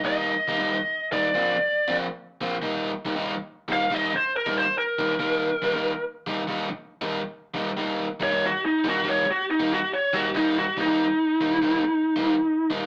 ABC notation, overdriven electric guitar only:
X:1
M:4/4
L:1/16
Q:"Swing" 1/4=93
K:Eb
V:1 name="Overdriven electric guitar"
[E,G,B,E] z [E,G,B,E] [E,G,B,E] z2 [E,G,B,E] z [F,B,CF] z2 [F,B,CF] z2 [F,B,CF] z | [E,G,B,E] z [E,G,B,E] [E,G,B,E] z2 [E,G,B,E] z [E,G,B,E] z2 [E,G,B,E] z2 [E,G,B,E] z | [E,G,B,E] z [E,G,B,E] [E,G,B,E] z2 [E,G,B,E] z [E,G,B,E] z2 [E,G,B,E] z2 [E,G,B,E] z | [E,G,B,E] z [E,G,B,E] [E,G,B,E] z2 [E,G,B,E] z [E,G,B,E] z2 [E,G,B,E] z2 [E,G,B,E] z |
[E,G,B,E] z [E,G,B,E] [E,G,B,E] z2 [E,G,B,E] z [E,G,B,E] z2 [E,G,B,E] z2 [E,G,B,E] z |]